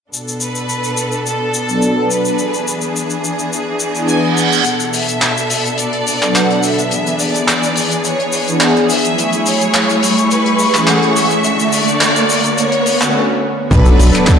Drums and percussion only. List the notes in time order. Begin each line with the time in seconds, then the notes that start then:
0.13 shaker
0.28 shaker
0.40 shaker
0.55 shaker
0.69 shaker
0.84 shaker
0.97 shaker
1.12 shaker
1.26 shaker
1.54 shaker
1.69 shaker
1.82 shaker
2.11 shaker
2.25 shaker
2.39 shaker
2.54 shaker
2.67 shaker
2.81 shaker
2.96 shaker
3.10 shaker
3.24 shaker
3.39 shaker
3.53 shaker
3.80 shaker
3.95 shaker
4.08 shaker
4.37 shaker
4.52 shaker
4.65 closed hi-hat, shaker
4.80 closed hi-hat, shaker
4.93 open hi-hat, shaker
5.08 closed hi-hat, shaker
5.22 clap, closed hi-hat, shaker
5.37 closed hi-hat, shaker
5.50 open hi-hat, shaker
5.66 closed hi-hat, shaker
5.78 closed hi-hat, shaker
5.93 closed hi-hat
6.07 open hi-hat, shaker
6.22 clap, closed hi-hat, shaker
6.35 clap, closed hi-hat, shaker
6.51 closed hi-hat
6.63 open hi-hat, shaker
6.79 closed hi-hat, shaker
6.91 closed hi-hat, shaker
7.07 closed hi-hat, shaker
7.19 open hi-hat, shaker
7.35 closed hi-hat, shaker
7.48 clap, closed hi-hat, shaker
7.63 closed hi-hat, shaker
7.76 open hi-hat, shaker
7.91 closed hi-hat, shaker
8.04 closed hi-hat, shaker
8.20 closed hi-hat
8.32 open hi-hat, shaker
8.48 closed hi-hat, shaker
8.60 clap, closed hi-hat, shaker
8.77 closed hi-hat
8.89 open hi-hat, shaker
9.05 closed hi-hat, shaker
9.18 closed hi-hat, shaker
9.33 closed hi-hat, shaker
9.46 open hi-hat, shaker
9.61 closed hi-hat, shaker
9.74 clap, closed hi-hat, shaker
9.90 closed hi-hat, shaker
10.03 open hi-hat, shaker
10.17 closed hi-hat, shaker
10.31 closed hi-hat, shaker
10.46 closed hi-hat
10.59 open hi-hat, shaker
10.74 clap, closed hi-hat, shaker
10.87 clap, closed hi-hat, shaker
11.03 closed hi-hat
11.16 open hi-hat, shaker
11.31 closed hi-hat, shaker
11.44 closed hi-hat, shaker
11.59 closed hi-hat, shaker
11.72 open hi-hat, shaker
11.88 closed hi-hat, shaker
12.01 clap, closed hi-hat, shaker
12.16 closed hi-hat, shaker
12.30 open hi-hat, shaker
12.44 closed hi-hat, shaker
12.58 closed hi-hat, shaker
12.72 closed hi-hat
12.86 open hi-hat, shaker
13.01 clap, closed hi-hat, shaker
13.71 kick, closed hi-hat, crash, shaker
13.86 closed hi-hat, shaker
13.99 open hi-hat, shaker
14.14 finger snap, closed hi-hat, shaker
14.27 kick, clap, closed hi-hat, shaker